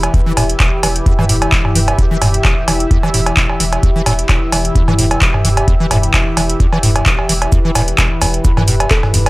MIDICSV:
0, 0, Header, 1, 6, 480
1, 0, Start_track
1, 0, Key_signature, 1, "minor"
1, 0, Tempo, 461538
1, 145, Time_signature, 4, 2, 24, 8
1, 9669, End_track
2, 0, Start_track
2, 0, Title_t, "Analog synth pad"
2, 0, Program_c, 0, 89
2, 0, Note_on_c, 0, 52, 87
2, 0, Note_on_c, 0, 64, 77
2, 0, Note_on_c, 0, 67, 80
2, 0, Note_on_c, 0, 71, 97
2, 129, Note_off_c, 0, 71, 0
2, 144, Note_on_c, 0, 76, 96
2, 7809, Note_off_c, 0, 76, 0
2, 7824, Note_on_c, 0, 71, 99
2, 9669, Note_off_c, 0, 52, 0
2, 9669, Note_off_c, 0, 64, 0
2, 9669, Note_off_c, 0, 67, 0
2, 9669, Note_off_c, 0, 71, 0
2, 9669, End_track
3, 0, Start_track
3, 0, Title_t, "Synth pluck"
3, 0, Program_c, 1, 84
3, 9264, Note_on_c, 1, 69, 92
3, 9669, Note_off_c, 1, 69, 0
3, 9669, End_track
4, 0, Start_track
4, 0, Title_t, "Acid bass"
4, 0, Program_c, 2, 38
4, 145, Note_on_c, 2, 40, 83
4, 216, Note_off_c, 2, 40, 0
4, 274, Note_on_c, 2, 52, 102
4, 335, Note_off_c, 2, 52, 0
4, 385, Note_on_c, 2, 45, 80
4, 456, Note_off_c, 2, 45, 0
4, 625, Note_on_c, 2, 28, 85
4, 732, Note_off_c, 2, 28, 0
4, 865, Note_on_c, 2, 52, 77
4, 908, Note_off_c, 2, 52, 0
4, 1105, Note_on_c, 2, 40, 82
4, 1176, Note_off_c, 2, 40, 0
4, 1235, Note_on_c, 2, 52, 101
4, 1295, Note_off_c, 2, 52, 0
4, 1345, Note_on_c, 2, 45, 76
4, 1416, Note_off_c, 2, 45, 0
4, 1585, Note_on_c, 2, 28, 85
4, 1692, Note_off_c, 2, 28, 0
4, 1825, Note_on_c, 2, 52, 73
4, 1868, Note_off_c, 2, 52, 0
4, 2065, Note_on_c, 2, 40, 85
4, 2136, Note_off_c, 2, 40, 0
4, 2194, Note_on_c, 2, 52, 100
4, 2255, Note_off_c, 2, 52, 0
4, 2305, Note_on_c, 2, 45, 76
4, 2376, Note_off_c, 2, 45, 0
4, 2545, Note_on_c, 2, 28, 86
4, 2652, Note_off_c, 2, 28, 0
4, 2785, Note_on_c, 2, 52, 76
4, 2828, Note_off_c, 2, 52, 0
4, 3025, Note_on_c, 2, 40, 77
4, 3096, Note_off_c, 2, 40, 0
4, 3154, Note_on_c, 2, 52, 107
4, 3215, Note_off_c, 2, 52, 0
4, 3265, Note_on_c, 2, 45, 75
4, 3336, Note_off_c, 2, 45, 0
4, 3505, Note_on_c, 2, 28, 82
4, 3612, Note_off_c, 2, 28, 0
4, 3745, Note_on_c, 2, 52, 75
4, 3788, Note_off_c, 2, 52, 0
4, 3985, Note_on_c, 2, 40, 83
4, 4056, Note_off_c, 2, 40, 0
4, 4115, Note_on_c, 2, 52, 102
4, 4175, Note_off_c, 2, 52, 0
4, 4225, Note_on_c, 2, 45, 77
4, 4296, Note_off_c, 2, 45, 0
4, 4465, Note_on_c, 2, 28, 85
4, 4572, Note_off_c, 2, 28, 0
4, 4705, Note_on_c, 2, 52, 77
4, 4748, Note_off_c, 2, 52, 0
4, 4945, Note_on_c, 2, 40, 86
4, 5016, Note_off_c, 2, 40, 0
4, 5074, Note_on_c, 2, 52, 106
4, 5135, Note_off_c, 2, 52, 0
4, 5185, Note_on_c, 2, 45, 75
4, 5256, Note_off_c, 2, 45, 0
4, 5425, Note_on_c, 2, 28, 85
4, 5532, Note_off_c, 2, 28, 0
4, 5665, Note_on_c, 2, 52, 73
4, 5708, Note_off_c, 2, 52, 0
4, 5905, Note_on_c, 2, 40, 82
4, 5976, Note_off_c, 2, 40, 0
4, 6035, Note_on_c, 2, 52, 104
4, 6095, Note_off_c, 2, 52, 0
4, 6145, Note_on_c, 2, 45, 76
4, 6216, Note_off_c, 2, 45, 0
4, 6385, Note_on_c, 2, 28, 84
4, 6492, Note_off_c, 2, 28, 0
4, 6625, Note_on_c, 2, 52, 75
4, 6668, Note_off_c, 2, 52, 0
4, 6864, Note_on_c, 2, 40, 84
4, 6936, Note_off_c, 2, 40, 0
4, 6994, Note_on_c, 2, 52, 106
4, 7055, Note_off_c, 2, 52, 0
4, 7104, Note_on_c, 2, 45, 73
4, 7176, Note_off_c, 2, 45, 0
4, 7345, Note_on_c, 2, 28, 83
4, 7452, Note_off_c, 2, 28, 0
4, 7584, Note_on_c, 2, 52, 74
4, 7627, Note_off_c, 2, 52, 0
4, 7825, Note_on_c, 2, 40, 83
4, 7896, Note_off_c, 2, 40, 0
4, 7954, Note_on_c, 2, 52, 102
4, 8015, Note_off_c, 2, 52, 0
4, 8064, Note_on_c, 2, 45, 79
4, 8136, Note_off_c, 2, 45, 0
4, 8304, Note_on_c, 2, 28, 85
4, 8412, Note_off_c, 2, 28, 0
4, 8545, Note_on_c, 2, 40, 74
4, 8587, Note_off_c, 2, 40, 0
4, 8784, Note_on_c, 2, 40, 81
4, 8856, Note_off_c, 2, 40, 0
4, 8914, Note_on_c, 2, 52, 103
4, 8975, Note_off_c, 2, 52, 0
4, 9024, Note_on_c, 2, 45, 74
4, 9096, Note_off_c, 2, 45, 0
4, 9264, Note_on_c, 2, 28, 82
4, 9372, Note_off_c, 2, 28, 0
4, 9504, Note_on_c, 2, 40, 75
4, 9548, Note_off_c, 2, 40, 0
4, 9669, End_track
5, 0, Start_track
5, 0, Title_t, "Sub bass"
5, 0, Program_c, 3, 38
5, 385, Note_on_c, 3, 28, 98
5, 567, Note_off_c, 3, 28, 0
5, 865, Note_on_c, 3, 28, 85
5, 1047, Note_off_c, 3, 28, 0
5, 1345, Note_on_c, 3, 28, 86
5, 1527, Note_off_c, 3, 28, 0
5, 1825, Note_on_c, 3, 28, 92
5, 2007, Note_off_c, 3, 28, 0
5, 2305, Note_on_c, 3, 28, 98
5, 2487, Note_off_c, 3, 28, 0
5, 2784, Note_on_c, 3, 28, 82
5, 2967, Note_off_c, 3, 28, 0
5, 3265, Note_on_c, 3, 28, 89
5, 3447, Note_off_c, 3, 28, 0
5, 3745, Note_on_c, 3, 28, 91
5, 3927, Note_off_c, 3, 28, 0
5, 4225, Note_on_c, 3, 28, 93
5, 4407, Note_off_c, 3, 28, 0
5, 4705, Note_on_c, 3, 28, 78
5, 4887, Note_off_c, 3, 28, 0
5, 5185, Note_on_c, 3, 28, 93
5, 5367, Note_off_c, 3, 28, 0
5, 5665, Note_on_c, 3, 28, 88
5, 5848, Note_off_c, 3, 28, 0
5, 6145, Note_on_c, 3, 28, 95
5, 6327, Note_off_c, 3, 28, 0
5, 6625, Note_on_c, 3, 28, 78
5, 6807, Note_off_c, 3, 28, 0
5, 7104, Note_on_c, 3, 28, 86
5, 7287, Note_off_c, 3, 28, 0
5, 7584, Note_on_c, 3, 28, 88
5, 7767, Note_off_c, 3, 28, 0
5, 8064, Note_on_c, 3, 28, 96
5, 8247, Note_off_c, 3, 28, 0
5, 8545, Note_on_c, 3, 28, 81
5, 8727, Note_off_c, 3, 28, 0
5, 9024, Note_on_c, 3, 28, 89
5, 9207, Note_off_c, 3, 28, 0
5, 9505, Note_on_c, 3, 28, 88
5, 9669, Note_off_c, 3, 28, 0
5, 9669, End_track
6, 0, Start_track
6, 0, Title_t, "Drums"
6, 35, Note_on_c, 9, 42, 61
6, 35, Note_on_c, 9, 56, 61
6, 139, Note_off_c, 9, 42, 0
6, 139, Note_off_c, 9, 56, 0
6, 145, Note_on_c, 9, 36, 124
6, 145, Note_on_c, 9, 42, 50
6, 249, Note_off_c, 9, 36, 0
6, 249, Note_off_c, 9, 42, 0
6, 385, Note_on_c, 9, 46, 104
6, 385, Note_on_c, 9, 56, 58
6, 489, Note_off_c, 9, 46, 0
6, 489, Note_off_c, 9, 56, 0
6, 515, Note_on_c, 9, 42, 61
6, 619, Note_off_c, 9, 42, 0
6, 624, Note_on_c, 9, 39, 112
6, 625, Note_on_c, 9, 36, 120
6, 625, Note_on_c, 9, 42, 49
6, 625, Note_on_c, 9, 56, 37
6, 728, Note_off_c, 9, 39, 0
6, 729, Note_off_c, 9, 36, 0
6, 729, Note_off_c, 9, 42, 0
6, 729, Note_off_c, 9, 56, 0
6, 865, Note_on_c, 9, 46, 111
6, 865, Note_on_c, 9, 56, 60
6, 969, Note_off_c, 9, 46, 0
6, 969, Note_off_c, 9, 56, 0
6, 995, Note_on_c, 9, 42, 60
6, 1099, Note_off_c, 9, 42, 0
6, 1105, Note_on_c, 9, 36, 118
6, 1106, Note_on_c, 9, 42, 50
6, 1209, Note_off_c, 9, 36, 0
6, 1210, Note_off_c, 9, 42, 0
6, 1235, Note_on_c, 9, 45, 86
6, 1235, Note_on_c, 9, 56, 39
6, 1339, Note_off_c, 9, 45, 0
6, 1339, Note_off_c, 9, 56, 0
6, 1345, Note_on_c, 9, 46, 105
6, 1449, Note_off_c, 9, 46, 0
6, 1475, Note_on_c, 9, 42, 64
6, 1475, Note_on_c, 9, 56, 58
6, 1579, Note_off_c, 9, 42, 0
6, 1579, Note_off_c, 9, 56, 0
6, 1585, Note_on_c, 9, 36, 122
6, 1585, Note_on_c, 9, 39, 115
6, 1585, Note_on_c, 9, 42, 51
6, 1689, Note_off_c, 9, 36, 0
6, 1689, Note_off_c, 9, 39, 0
6, 1689, Note_off_c, 9, 42, 0
6, 1715, Note_on_c, 9, 45, 79
6, 1715, Note_on_c, 9, 56, 38
6, 1819, Note_off_c, 9, 45, 0
6, 1819, Note_off_c, 9, 56, 0
6, 1825, Note_on_c, 9, 45, 81
6, 1825, Note_on_c, 9, 46, 110
6, 1929, Note_off_c, 9, 45, 0
6, 1929, Note_off_c, 9, 46, 0
6, 1955, Note_on_c, 9, 42, 63
6, 1955, Note_on_c, 9, 56, 58
6, 2059, Note_off_c, 9, 42, 0
6, 2059, Note_off_c, 9, 56, 0
6, 2065, Note_on_c, 9, 36, 116
6, 2065, Note_on_c, 9, 42, 47
6, 2169, Note_off_c, 9, 36, 0
6, 2169, Note_off_c, 9, 42, 0
6, 2305, Note_on_c, 9, 45, 79
6, 2305, Note_on_c, 9, 46, 98
6, 2305, Note_on_c, 9, 56, 56
6, 2409, Note_off_c, 9, 45, 0
6, 2409, Note_off_c, 9, 46, 0
6, 2409, Note_off_c, 9, 56, 0
6, 2435, Note_on_c, 9, 42, 64
6, 2539, Note_off_c, 9, 42, 0
6, 2544, Note_on_c, 9, 39, 107
6, 2545, Note_on_c, 9, 36, 116
6, 2545, Note_on_c, 9, 42, 50
6, 2545, Note_on_c, 9, 56, 35
6, 2648, Note_off_c, 9, 39, 0
6, 2649, Note_off_c, 9, 36, 0
6, 2649, Note_off_c, 9, 42, 0
6, 2649, Note_off_c, 9, 56, 0
6, 2785, Note_on_c, 9, 46, 104
6, 2785, Note_on_c, 9, 56, 58
6, 2889, Note_off_c, 9, 46, 0
6, 2889, Note_off_c, 9, 56, 0
6, 2915, Note_on_c, 9, 42, 60
6, 3019, Note_off_c, 9, 42, 0
6, 3025, Note_on_c, 9, 36, 119
6, 3025, Note_on_c, 9, 42, 52
6, 3129, Note_off_c, 9, 36, 0
6, 3129, Note_off_c, 9, 42, 0
6, 3155, Note_on_c, 9, 56, 37
6, 3259, Note_off_c, 9, 56, 0
6, 3265, Note_on_c, 9, 46, 97
6, 3369, Note_off_c, 9, 46, 0
6, 3395, Note_on_c, 9, 42, 64
6, 3395, Note_on_c, 9, 56, 57
6, 3499, Note_off_c, 9, 42, 0
6, 3499, Note_off_c, 9, 56, 0
6, 3504, Note_on_c, 9, 39, 117
6, 3505, Note_on_c, 9, 36, 116
6, 3505, Note_on_c, 9, 42, 53
6, 3608, Note_off_c, 9, 39, 0
6, 3609, Note_off_c, 9, 36, 0
6, 3609, Note_off_c, 9, 42, 0
6, 3635, Note_on_c, 9, 56, 39
6, 3739, Note_off_c, 9, 56, 0
6, 3745, Note_on_c, 9, 46, 107
6, 3849, Note_off_c, 9, 46, 0
6, 3875, Note_on_c, 9, 42, 63
6, 3875, Note_on_c, 9, 56, 55
6, 3979, Note_off_c, 9, 42, 0
6, 3979, Note_off_c, 9, 56, 0
6, 3985, Note_on_c, 9, 36, 114
6, 3985, Note_on_c, 9, 42, 54
6, 4089, Note_off_c, 9, 36, 0
6, 4089, Note_off_c, 9, 42, 0
6, 4225, Note_on_c, 9, 46, 97
6, 4225, Note_on_c, 9, 56, 52
6, 4329, Note_off_c, 9, 46, 0
6, 4329, Note_off_c, 9, 56, 0
6, 4355, Note_on_c, 9, 42, 65
6, 4459, Note_off_c, 9, 42, 0
6, 4464, Note_on_c, 9, 39, 114
6, 4465, Note_on_c, 9, 36, 107
6, 4465, Note_on_c, 9, 42, 54
6, 4465, Note_on_c, 9, 56, 36
6, 4568, Note_off_c, 9, 39, 0
6, 4569, Note_off_c, 9, 36, 0
6, 4569, Note_off_c, 9, 42, 0
6, 4569, Note_off_c, 9, 56, 0
6, 4705, Note_on_c, 9, 46, 106
6, 4705, Note_on_c, 9, 56, 57
6, 4809, Note_off_c, 9, 46, 0
6, 4809, Note_off_c, 9, 56, 0
6, 4835, Note_on_c, 9, 42, 65
6, 4939, Note_off_c, 9, 42, 0
6, 4945, Note_on_c, 9, 36, 120
6, 4946, Note_on_c, 9, 42, 54
6, 5049, Note_off_c, 9, 36, 0
6, 5050, Note_off_c, 9, 42, 0
6, 5075, Note_on_c, 9, 45, 85
6, 5075, Note_on_c, 9, 56, 37
6, 5179, Note_off_c, 9, 45, 0
6, 5179, Note_off_c, 9, 56, 0
6, 5185, Note_on_c, 9, 46, 98
6, 5289, Note_off_c, 9, 46, 0
6, 5315, Note_on_c, 9, 42, 67
6, 5315, Note_on_c, 9, 56, 55
6, 5419, Note_off_c, 9, 42, 0
6, 5419, Note_off_c, 9, 56, 0
6, 5424, Note_on_c, 9, 39, 121
6, 5425, Note_on_c, 9, 36, 118
6, 5425, Note_on_c, 9, 42, 55
6, 5528, Note_off_c, 9, 39, 0
6, 5529, Note_off_c, 9, 36, 0
6, 5529, Note_off_c, 9, 42, 0
6, 5555, Note_on_c, 9, 45, 82
6, 5555, Note_on_c, 9, 56, 37
6, 5659, Note_off_c, 9, 45, 0
6, 5659, Note_off_c, 9, 56, 0
6, 5665, Note_on_c, 9, 45, 82
6, 5665, Note_on_c, 9, 46, 97
6, 5769, Note_off_c, 9, 45, 0
6, 5769, Note_off_c, 9, 46, 0
6, 5795, Note_on_c, 9, 42, 67
6, 5795, Note_on_c, 9, 56, 55
6, 5899, Note_off_c, 9, 42, 0
6, 5899, Note_off_c, 9, 56, 0
6, 5905, Note_on_c, 9, 36, 118
6, 5905, Note_on_c, 9, 42, 52
6, 6009, Note_off_c, 9, 36, 0
6, 6009, Note_off_c, 9, 42, 0
6, 6145, Note_on_c, 9, 45, 83
6, 6145, Note_on_c, 9, 46, 96
6, 6145, Note_on_c, 9, 56, 59
6, 6249, Note_off_c, 9, 45, 0
6, 6249, Note_off_c, 9, 46, 0
6, 6249, Note_off_c, 9, 56, 0
6, 6275, Note_on_c, 9, 42, 65
6, 6379, Note_off_c, 9, 42, 0
6, 6384, Note_on_c, 9, 39, 115
6, 6385, Note_on_c, 9, 36, 115
6, 6385, Note_on_c, 9, 42, 53
6, 6385, Note_on_c, 9, 56, 36
6, 6488, Note_off_c, 9, 39, 0
6, 6489, Note_off_c, 9, 36, 0
6, 6489, Note_off_c, 9, 42, 0
6, 6489, Note_off_c, 9, 56, 0
6, 6625, Note_on_c, 9, 46, 104
6, 6625, Note_on_c, 9, 56, 57
6, 6729, Note_off_c, 9, 46, 0
6, 6729, Note_off_c, 9, 56, 0
6, 6755, Note_on_c, 9, 42, 64
6, 6859, Note_off_c, 9, 42, 0
6, 6865, Note_on_c, 9, 36, 121
6, 6865, Note_on_c, 9, 42, 55
6, 6969, Note_off_c, 9, 36, 0
6, 6969, Note_off_c, 9, 42, 0
6, 6995, Note_on_c, 9, 56, 40
6, 7099, Note_off_c, 9, 56, 0
6, 7105, Note_on_c, 9, 45, 86
6, 7105, Note_on_c, 9, 46, 102
6, 7209, Note_off_c, 9, 45, 0
6, 7209, Note_off_c, 9, 46, 0
6, 7234, Note_on_c, 9, 42, 70
6, 7234, Note_on_c, 9, 56, 58
6, 7338, Note_off_c, 9, 42, 0
6, 7338, Note_off_c, 9, 56, 0
6, 7344, Note_on_c, 9, 39, 122
6, 7344, Note_on_c, 9, 42, 54
6, 7345, Note_on_c, 9, 36, 118
6, 7448, Note_off_c, 9, 39, 0
6, 7448, Note_off_c, 9, 42, 0
6, 7449, Note_off_c, 9, 36, 0
6, 7474, Note_on_c, 9, 56, 38
6, 7578, Note_off_c, 9, 56, 0
6, 7584, Note_on_c, 9, 46, 108
6, 7688, Note_off_c, 9, 46, 0
6, 7714, Note_on_c, 9, 42, 65
6, 7714, Note_on_c, 9, 56, 57
6, 7818, Note_off_c, 9, 42, 0
6, 7818, Note_off_c, 9, 56, 0
6, 7824, Note_on_c, 9, 36, 121
6, 7824, Note_on_c, 9, 42, 54
6, 7825, Note_on_c, 9, 82, 86
6, 7928, Note_off_c, 9, 36, 0
6, 7928, Note_off_c, 9, 42, 0
6, 7929, Note_off_c, 9, 82, 0
6, 8064, Note_on_c, 9, 46, 102
6, 8064, Note_on_c, 9, 56, 58
6, 8065, Note_on_c, 9, 38, 46
6, 8065, Note_on_c, 9, 82, 68
6, 8168, Note_off_c, 9, 46, 0
6, 8168, Note_off_c, 9, 56, 0
6, 8169, Note_off_c, 9, 38, 0
6, 8169, Note_off_c, 9, 82, 0
6, 8194, Note_on_c, 9, 42, 67
6, 8298, Note_off_c, 9, 42, 0
6, 8304, Note_on_c, 9, 36, 114
6, 8304, Note_on_c, 9, 39, 117
6, 8304, Note_on_c, 9, 42, 53
6, 8304, Note_on_c, 9, 56, 39
6, 8305, Note_on_c, 9, 38, 110
6, 8305, Note_on_c, 9, 82, 90
6, 8408, Note_off_c, 9, 36, 0
6, 8408, Note_off_c, 9, 39, 0
6, 8408, Note_off_c, 9, 42, 0
6, 8408, Note_off_c, 9, 56, 0
6, 8409, Note_off_c, 9, 38, 0
6, 8409, Note_off_c, 9, 82, 0
6, 8544, Note_on_c, 9, 46, 108
6, 8544, Note_on_c, 9, 56, 59
6, 8545, Note_on_c, 9, 82, 67
6, 8648, Note_off_c, 9, 46, 0
6, 8648, Note_off_c, 9, 56, 0
6, 8649, Note_off_c, 9, 82, 0
6, 8674, Note_on_c, 9, 42, 62
6, 8778, Note_off_c, 9, 42, 0
6, 8784, Note_on_c, 9, 36, 127
6, 8784, Note_on_c, 9, 42, 57
6, 8785, Note_on_c, 9, 82, 89
6, 8888, Note_off_c, 9, 36, 0
6, 8888, Note_off_c, 9, 42, 0
6, 8889, Note_off_c, 9, 82, 0
6, 8914, Note_on_c, 9, 45, 100
6, 8914, Note_on_c, 9, 56, 38
6, 8915, Note_on_c, 9, 38, 60
6, 9018, Note_off_c, 9, 45, 0
6, 9018, Note_off_c, 9, 56, 0
6, 9019, Note_off_c, 9, 38, 0
6, 9024, Note_on_c, 9, 46, 106
6, 9025, Note_on_c, 9, 82, 70
6, 9128, Note_off_c, 9, 46, 0
6, 9129, Note_off_c, 9, 82, 0
6, 9154, Note_on_c, 9, 42, 69
6, 9154, Note_on_c, 9, 56, 57
6, 9258, Note_off_c, 9, 42, 0
6, 9258, Note_off_c, 9, 56, 0
6, 9263, Note_on_c, 9, 39, 127
6, 9264, Note_on_c, 9, 36, 118
6, 9264, Note_on_c, 9, 42, 54
6, 9265, Note_on_c, 9, 38, 117
6, 9265, Note_on_c, 9, 82, 83
6, 9367, Note_off_c, 9, 39, 0
6, 9368, Note_off_c, 9, 36, 0
6, 9368, Note_off_c, 9, 42, 0
6, 9369, Note_off_c, 9, 38, 0
6, 9369, Note_off_c, 9, 82, 0
6, 9394, Note_on_c, 9, 45, 84
6, 9394, Note_on_c, 9, 56, 41
6, 9395, Note_on_c, 9, 38, 48
6, 9498, Note_off_c, 9, 45, 0
6, 9498, Note_off_c, 9, 56, 0
6, 9499, Note_off_c, 9, 38, 0
6, 9504, Note_on_c, 9, 45, 87
6, 9504, Note_on_c, 9, 46, 108
6, 9505, Note_on_c, 9, 38, 38
6, 9505, Note_on_c, 9, 82, 61
6, 9608, Note_off_c, 9, 45, 0
6, 9608, Note_off_c, 9, 46, 0
6, 9609, Note_off_c, 9, 38, 0
6, 9609, Note_off_c, 9, 82, 0
6, 9634, Note_on_c, 9, 42, 70
6, 9634, Note_on_c, 9, 56, 61
6, 9635, Note_on_c, 9, 38, 53
6, 9669, Note_off_c, 9, 38, 0
6, 9669, Note_off_c, 9, 42, 0
6, 9669, Note_off_c, 9, 56, 0
6, 9669, End_track
0, 0, End_of_file